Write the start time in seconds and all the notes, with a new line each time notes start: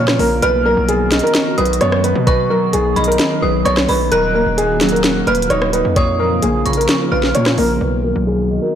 Already playing: A#2 C#3 F3 A#3 D#4 C#5 F6
0.08 cross-stick, snare
0.19 A#1 A#3 A#4, open hi-hat
0.42 B1 B2 D#3 F#3 B3 F#4 B4 F6, closed hi-hat
0.65 F#3 A#4
0.77 B1
0.89 B3 G#4, closed hi-hat
1.12 D#3, snare, closed hi-hat
1.19 closed hi-hat
1.23 A#4, closed hi-hat
1.35 snare, closed hi-hat
1.58 B1 F#3 B4 D#6, closed hi-hat
1.65 closed hi-hat
1.73 closed hi-hat
1.81 F#2 B3 C#5, cross-stick, closed hi-hat
1.92 cross-stick
2.04 B3 B4, closed hi-hat
2.15 B2
2.27 B2 G#4 B4 C#6, kick, closed hi-hat
2.50 F#3 A#4
2.73 B1 B3 G#4, closed hi-hat
2.96 B1 D#3 B5, closed hi-hat
3.04 A#4, closed hi-hat
3.12 closed hi-hat
3.19 snare, closed hi-hat
3.42 B1 F#3 B4 D#6
3.65 B1 B3 C#5 C#6, cross-stick, closed hi-hat
3.77 cross-stick, snare
3.89 B1 B3 B4 B5, open hi-hat
4.12 D#1 D#3 A#3 F#4 A#4 F#6, closed hi-hat
4.35 A#3 A#4
4.46 D#1
4.58 D#4 G#4, closed hi-hat
4.81 F#3, snare, closed hi-hat
4.89 A#4, closed hi-hat
4.96 closed hi-hat
5.04 snare, closed hi-hat
5.27 D#1 A#3 B4 F6, closed hi-hat
5.35 closed hi-hat
5.42 closed hi-hat
5.50 D#1 D#4 C#5, cross-stick, closed hi-hat
5.62 cross-stick
5.73 D#4 B4, closed hi-hat
5.85 F2
5.96 A#2 C#3 F3 A#3 F4 C#5 D#6, kick, closed hi-hat
6.19 F3 A#4
6.42 A#1 A#3 G#4, closed hi-hat
6.65 A#1 C#3 C#6, closed hi-hat
6.73 closed hi-hat
6.77 A#4, closed hi-hat
6.89 snare, closed hi-hat
7.12 A#1 F3 B4 F6
7.23 snare
7.35 A#2 A#3 C#5, closed hi-hat
7.46 cross-stick, snare
7.58 A#1 A#3 A#4, open hi-hat
7.81 B1 B2 D#3 F#3 B3 F#4 B4
8.04 F#3 A#4
8.16 B1
8.27 B3 G#4
8.50 D#3
8.62 A#4